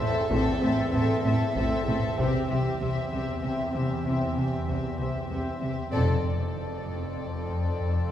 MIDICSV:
0, 0, Header, 1, 10, 480
1, 0, Start_track
1, 0, Tempo, 625000
1, 234, Time_signature, 3, 2, 24, 8
1, 6234, End_track
2, 0, Start_track
2, 0, Title_t, "Violin section"
2, 0, Program_c, 0, 48
2, 0, Note_on_c, 0, 76, 60
2, 232, Note_off_c, 0, 76, 0
2, 242, Note_on_c, 0, 76, 55
2, 474, Note_off_c, 0, 76, 0
2, 485, Note_on_c, 0, 76, 51
2, 715, Note_off_c, 0, 76, 0
2, 723, Note_on_c, 0, 76, 56
2, 954, Note_off_c, 0, 76, 0
2, 963, Note_on_c, 0, 76, 51
2, 1194, Note_off_c, 0, 76, 0
2, 1203, Note_on_c, 0, 76, 55
2, 1430, Note_off_c, 0, 76, 0
2, 1439, Note_on_c, 0, 76, 52
2, 1672, Note_off_c, 0, 76, 0
2, 1683, Note_on_c, 0, 76, 47
2, 1904, Note_off_c, 0, 76, 0
2, 1913, Note_on_c, 0, 76, 42
2, 2146, Note_off_c, 0, 76, 0
2, 2155, Note_on_c, 0, 76, 43
2, 2388, Note_off_c, 0, 76, 0
2, 2397, Note_on_c, 0, 76, 39
2, 2628, Note_off_c, 0, 76, 0
2, 2637, Note_on_c, 0, 76, 37
2, 2869, Note_off_c, 0, 76, 0
2, 2878, Note_on_c, 0, 76, 36
2, 3109, Note_off_c, 0, 76, 0
2, 3119, Note_on_c, 0, 76, 35
2, 3352, Note_off_c, 0, 76, 0
2, 3365, Note_on_c, 0, 76, 30
2, 3584, Note_off_c, 0, 76, 0
2, 3593, Note_on_c, 0, 76, 28
2, 3825, Note_off_c, 0, 76, 0
2, 3834, Note_on_c, 0, 76, 28
2, 4064, Note_off_c, 0, 76, 0
2, 4073, Note_on_c, 0, 76, 25
2, 4302, Note_off_c, 0, 76, 0
2, 4312, Note_on_c, 0, 76, 29
2, 4548, Note_off_c, 0, 76, 0
2, 4549, Note_on_c, 0, 74, 48
2, 6234, Note_off_c, 0, 74, 0
2, 6234, End_track
3, 0, Start_track
3, 0, Title_t, "Violin section"
3, 0, Program_c, 1, 48
3, 4, Note_on_c, 1, 69, 53
3, 234, Note_off_c, 1, 69, 0
3, 250, Note_on_c, 1, 69, 69
3, 477, Note_off_c, 1, 69, 0
3, 499, Note_on_c, 1, 69, 57
3, 719, Note_off_c, 1, 69, 0
3, 728, Note_on_c, 1, 69, 49
3, 956, Note_off_c, 1, 69, 0
3, 973, Note_on_c, 1, 69, 50
3, 1196, Note_off_c, 1, 69, 0
3, 1205, Note_on_c, 1, 69, 49
3, 1432, Note_off_c, 1, 69, 0
3, 1441, Note_on_c, 1, 69, 51
3, 1673, Note_off_c, 1, 69, 0
3, 1682, Note_on_c, 1, 67, 60
3, 1913, Note_off_c, 1, 67, 0
3, 1929, Note_on_c, 1, 67, 45
3, 2157, Note_off_c, 1, 67, 0
3, 2170, Note_on_c, 1, 67, 40
3, 2397, Note_off_c, 1, 67, 0
3, 2415, Note_on_c, 1, 67, 38
3, 2640, Note_off_c, 1, 67, 0
3, 2654, Note_on_c, 1, 67, 36
3, 2876, Note_off_c, 1, 67, 0
3, 2885, Note_on_c, 1, 67, 36
3, 3115, Note_off_c, 1, 67, 0
3, 3126, Note_on_c, 1, 67, 41
3, 3355, Note_off_c, 1, 67, 0
3, 3378, Note_on_c, 1, 67, 31
3, 3590, Note_off_c, 1, 67, 0
3, 3599, Note_on_c, 1, 67, 30
3, 3828, Note_off_c, 1, 67, 0
3, 3838, Note_on_c, 1, 67, 27
3, 4066, Note_off_c, 1, 67, 0
3, 4076, Note_on_c, 1, 67, 26
3, 4307, Note_off_c, 1, 67, 0
3, 4317, Note_on_c, 1, 67, 27
3, 4547, Note_on_c, 1, 69, 58
3, 4551, Note_off_c, 1, 67, 0
3, 6234, Note_off_c, 1, 69, 0
3, 6234, End_track
4, 0, Start_track
4, 0, Title_t, "Viola section"
4, 0, Program_c, 2, 48
4, 0, Note_on_c, 2, 60, 50
4, 231, Note_off_c, 2, 60, 0
4, 242, Note_on_c, 2, 60, 61
4, 473, Note_off_c, 2, 60, 0
4, 484, Note_on_c, 2, 60, 56
4, 714, Note_off_c, 2, 60, 0
4, 724, Note_on_c, 2, 60, 56
4, 950, Note_off_c, 2, 60, 0
4, 960, Note_on_c, 2, 60, 46
4, 1190, Note_off_c, 2, 60, 0
4, 1199, Note_on_c, 2, 60, 57
4, 1432, Note_off_c, 2, 60, 0
4, 1444, Note_on_c, 2, 60, 48
4, 1674, Note_off_c, 2, 60, 0
4, 1685, Note_on_c, 2, 60, 54
4, 1915, Note_off_c, 2, 60, 0
4, 1927, Note_on_c, 2, 60, 43
4, 2148, Note_off_c, 2, 60, 0
4, 2158, Note_on_c, 2, 60, 43
4, 2391, Note_off_c, 2, 60, 0
4, 2401, Note_on_c, 2, 60, 39
4, 2624, Note_off_c, 2, 60, 0
4, 2633, Note_on_c, 2, 60, 41
4, 2862, Note_off_c, 2, 60, 0
4, 2871, Note_on_c, 2, 60, 31
4, 3108, Note_off_c, 2, 60, 0
4, 3116, Note_on_c, 2, 60, 33
4, 3344, Note_off_c, 2, 60, 0
4, 3353, Note_on_c, 2, 60, 28
4, 3585, Note_off_c, 2, 60, 0
4, 3594, Note_on_c, 2, 60, 28
4, 3826, Note_off_c, 2, 60, 0
4, 3835, Note_on_c, 2, 60, 25
4, 4066, Note_off_c, 2, 60, 0
4, 4075, Note_on_c, 2, 60, 31
4, 4303, Note_off_c, 2, 60, 0
4, 4312, Note_on_c, 2, 60, 24
4, 4541, Note_off_c, 2, 60, 0
4, 4550, Note_on_c, 2, 60, 46
4, 6234, Note_off_c, 2, 60, 0
4, 6234, End_track
5, 0, Start_track
5, 0, Title_t, "French horn section"
5, 0, Program_c, 3, 60
5, 238, Note_on_c, 3, 52, 58
5, 238, Note_on_c, 3, 60, 63
5, 404, Note_off_c, 3, 52, 0
5, 404, Note_off_c, 3, 60, 0
5, 1676, Note_on_c, 3, 52, 50
5, 1677, Note_on_c, 3, 60, 53
5, 1842, Note_off_c, 3, 52, 0
5, 1843, Note_off_c, 3, 60, 0
5, 3120, Note_on_c, 3, 52, 32
5, 3127, Note_on_c, 3, 60, 34
5, 3285, Note_off_c, 3, 52, 0
5, 3290, Note_off_c, 3, 60, 0
5, 6234, End_track
6, 0, Start_track
6, 0, Title_t, "Analog synth bass"
6, 0, Program_c, 4, 38
6, 0, Note_on_c, 4, 45, 60
6, 138, Note_off_c, 4, 45, 0
6, 236, Note_on_c, 4, 45, 81
6, 379, Note_off_c, 4, 45, 0
6, 479, Note_on_c, 4, 45, 53
6, 622, Note_off_c, 4, 45, 0
6, 717, Note_on_c, 4, 45, 58
6, 860, Note_off_c, 4, 45, 0
6, 960, Note_on_c, 4, 45, 72
6, 1102, Note_off_c, 4, 45, 0
6, 1200, Note_on_c, 4, 57, 54
6, 1342, Note_off_c, 4, 57, 0
6, 1442, Note_on_c, 4, 45, 58
6, 1584, Note_off_c, 4, 45, 0
6, 1681, Note_on_c, 4, 48, 81
6, 1823, Note_off_c, 4, 48, 0
6, 1919, Note_on_c, 4, 48, 49
6, 2062, Note_off_c, 4, 48, 0
6, 2162, Note_on_c, 4, 48, 52
6, 2304, Note_off_c, 4, 48, 0
6, 2398, Note_on_c, 4, 48, 74
6, 2541, Note_off_c, 4, 48, 0
6, 2637, Note_on_c, 4, 60, 49
6, 2780, Note_off_c, 4, 60, 0
6, 2874, Note_on_c, 4, 48, 52
6, 3018, Note_off_c, 4, 48, 0
6, 3115, Note_on_c, 4, 48, 62
6, 3259, Note_off_c, 4, 48, 0
6, 3356, Note_on_c, 4, 48, 47
6, 3500, Note_off_c, 4, 48, 0
6, 3598, Note_on_c, 4, 48, 46
6, 3741, Note_off_c, 4, 48, 0
6, 3835, Note_on_c, 4, 48, 68
6, 3979, Note_off_c, 4, 48, 0
6, 4073, Note_on_c, 4, 60, 44
6, 4217, Note_off_c, 4, 60, 0
6, 4314, Note_on_c, 4, 48, 46
6, 4458, Note_off_c, 4, 48, 0
6, 4550, Note_on_c, 4, 41, 90
6, 4695, Note_off_c, 4, 41, 0
6, 4790, Note_on_c, 4, 41, 47
6, 4935, Note_off_c, 4, 41, 0
6, 5026, Note_on_c, 4, 53, 48
6, 5173, Note_off_c, 4, 53, 0
6, 5271, Note_on_c, 4, 41, 62
6, 5416, Note_off_c, 4, 41, 0
6, 5509, Note_on_c, 4, 41, 49
6, 5655, Note_off_c, 4, 41, 0
6, 5751, Note_on_c, 4, 41, 52
6, 5896, Note_off_c, 4, 41, 0
6, 5994, Note_on_c, 4, 41, 69
6, 6138, Note_off_c, 4, 41, 0
6, 6234, End_track
7, 0, Start_track
7, 0, Title_t, "Cello section"
7, 0, Program_c, 5, 48
7, 232, Note_on_c, 5, 45, 71
7, 294, Note_off_c, 5, 45, 0
7, 474, Note_on_c, 5, 45, 57
7, 536, Note_off_c, 5, 45, 0
7, 711, Note_on_c, 5, 45, 65
7, 773, Note_off_c, 5, 45, 0
7, 955, Note_on_c, 5, 45, 56
7, 1016, Note_off_c, 5, 45, 0
7, 1198, Note_on_c, 5, 45, 59
7, 1260, Note_off_c, 5, 45, 0
7, 1442, Note_on_c, 5, 45, 57
7, 1503, Note_off_c, 5, 45, 0
7, 1684, Note_on_c, 5, 48, 55
7, 1746, Note_off_c, 5, 48, 0
7, 1919, Note_on_c, 5, 48, 49
7, 1981, Note_off_c, 5, 48, 0
7, 2161, Note_on_c, 5, 48, 46
7, 2222, Note_off_c, 5, 48, 0
7, 2405, Note_on_c, 5, 48, 44
7, 2466, Note_off_c, 5, 48, 0
7, 2646, Note_on_c, 5, 48, 42
7, 2707, Note_off_c, 5, 48, 0
7, 2882, Note_on_c, 5, 48, 40
7, 2944, Note_off_c, 5, 48, 0
7, 3123, Note_on_c, 5, 48, 39
7, 3184, Note_off_c, 5, 48, 0
7, 3361, Note_on_c, 5, 48, 29
7, 3423, Note_off_c, 5, 48, 0
7, 3601, Note_on_c, 5, 48, 32
7, 3662, Note_off_c, 5, 48, 0
7, 3842, Note_on_c, 5, 48, 32
7, 3904, Note_off_c, 5, 48, 0
7, 4082, Note_on_c, 5, 48, 30
7, 4143, Note_off_c, 5, 48, 0
7, 4319, Note_on_c, 5, 48, 28
7, 4380, Note_off_c, 5, 48, 0
7, 4558, Note_on_c, 5, 41, 52
7, 6234, Note_off_c, 5, 41, 0
7, 6234, End_track
8, 0, Start_track
8, 0, Title_t, "Synth drone"
8, 0, Program_c, 6, 95
8, 0, Note_on_c, 6, 40, 67
8, 1645, Note_off_c, 6, 40, 0
8, 1681, Note_on_c, 6, 40, 67
8, 4527, Note_off_c, 6, 40, 0
8, 4560, Note_on_c, 6, 41, 60
8, 6234, Note_off_c, 6, 41, 0
8, 6234, End_track
9, 0, Start_track
9, 0, Title_t, "Double bass section"
9, 0, Program_c, 7, 48
9, 237, Note_on_c, 7, 33, 65
9, 298, Note_off_c, 7, 33, 0
9, 480, Note_on_c, 7, 33, 53
9, 541, Note_off_c, 7, 33, 0
9, 721, Note_on_c, 7, 33, 64
9, 783, Note_off_c, 7, 33, 0
9, 955, Note_on_c, 7, 33, 59
9, 1016, Note_off_c, 7, 33, 0
9, 1196, Note_on_c, 7, 33, 62
9, 1258, Note_off_c, 7, 33, 0
9, 1435, Note_on_c, 7, 33, 61
9, 1496, Note_off_c, 7, 33, 0
9, 1676, Note_on_c, 7, 36, 62
9, 1737, Note_off_c, 7, 36, 0
9, 1917, Note_on_c, 7, 36, 49
9, 1978, Note_off_c, 7, 36, 0
9, 2158, Note_on_c, 7, 36, 48
9, 2220, Note_off_c, 7, 36, 0
9, 2399, Note_on_c, 7, 36, 46
9, 2461, Note_off_c, 7, 36, 0
9, 2639, Note_on_c, 7, 36, 40
9, 2701, Note_off_c, 7, 36, 0
9, 2885, Note_on_c, 7, 36, 35
9, 2946, Note_off_c, 7, 36, 0
9, 3122, Note_on_c, 7, 36, 38
9, 3183, Note_off_c, 7, 36, 0
9, 3365, Note_on_c, 7, 36, 33
9, 3427, Note_off_c, 7, 36, 0
9, 3602, Note_on_c, 7, 36, 30
9, 3664, Note_off_c, 7, 36, 0
9, 3841, Note_on_c, 7, 36, 32
9, 3902, Note_off_c, 7, 36, 0
9, 4082, Note_on_c, 7, 36, 28
9, 4143, Note_off_c, 7, 36, 0
9, 4316, Note_on_c, 7, 36, 27
9, 4377, Note_off_c, 7, 36, 0
9, 4553, Note_on_c, 7, 29, 57
9, 6234, Note_off_c, 7, 29, 0
9, 6234, End_track
10, 0, Start_track
10, 0, Title_t, "Taiko and cinematic ensemble drums"
10, 237, Note_on_c, 9, 41, 80
10, 314, Note_off_c, 9, 41, 0
10, 1200, Note_on_c, 9, 41, 62
10, 1277, Note_off_c, 9, 41, 0
10, 1680, Note_on_c, 9, 41, 50
10, 1757, Note_off_c, 9, 41, 0
10, 6234, End_track
0, 0, End_of_file